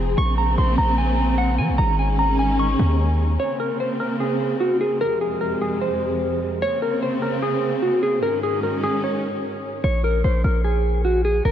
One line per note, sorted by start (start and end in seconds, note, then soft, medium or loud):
0.00 0.15 F1 loud
0.00 0.16 F3 medium
0.00 0.16 C4 medium
0.00 0.16 G#4 medium
0.00 0.14 C6 medium
0.18 0.56 A#1 loud
0.18 1.77 C#3 medium
0.18 1.77 A#3 medium
0.18 1.77 C4 loud
0.18 0.35 C#6 loud
0.38 0.55 A#5 medium
0.58 0.77 A#1 loud
0.58 0.75 C6 medium
0.78 1.60 A#1 loud
0.78 0.95 A#5 medium
0.98 1.36 G#5 medium
1.38 1.55 F#5 medium
1.58 1.70 F3 loud
1.58 1.76 G#5 medium
1.69 1.78 A#1 loud
1.78 2.75 G#1 loud
1.78 3.38 D#3 medium
1.78 3.38 G#3 medium
1.78 3.38 C#4 medium
1.78 1.96 A#5 loud
1.99 2.16 G#5 medium
2.19 2.36 A#5 medium
2.39 2.56 G#5 loud
2.59 3.36 C#6 medium
2.79 3.37 D#2 loud
3.40 4.99 C#3 medium
3.40 4.99 A#3 medium
3.40 4.99 C4 medium
3.40 3.57 C#5 loud
3.60 3.77 A#4 medium
3.80 3.97 C5 medium
4.00 4.17 A#4 medium
4.20 4.58 G#4 medium
4.60 4.78 F#4 medium
4.81 4.98 G#4 medium
5.01 6.60 F2 medium
5.01 6.60 C3 medium
5.01 6.60 G#3 medium
5.01 5.18 A#4 loud
5.21 5.38 G#4 medium
5.41 5.58 A#4 medium
5.62 5.79 G#4 medium
5.81 6.58 C5 medium
6.62 8.21 C#3 medium
6.62 8.21 A#3 medium
6.62 8.21 C4 medium
6.62 6.79 C#5 loud
6.82 6.99 A#4 medium
7.03 7.20 C5 medium
7.22 7.39 A#4 medium
7.42 7.80 G#4 medium
7.82 8.00 F#4 medium
8.03 8.20 G#4 medium
8.23 9.82 G#2 medium
8.23 9.82 D#3 medium
8.23 9.82 C#4 medium
8.23 8.40 A#4 loud
8.43 8.60 G#4 medium
8.63 8.80 A#4 medium
8.83 9.01 G#4 medium
9.04 9.80 C#5 medium
9.84 10.23 A#1 loud
9.84 10.01 C#5 loud
10.04 10.21 A#4 medium
10.24 10.44 A#1 loud
10.24 10.42 C5 medium
10.44 11.41 A#1 loud
10.44 10.62 A#4 medium
10.64 11.02 G#4 medium
11.05 11.22 F#4 medium
11.25 11.42 G#4 medium
11.45 11.52 F1 loud
11.45 11.52 A#4 loud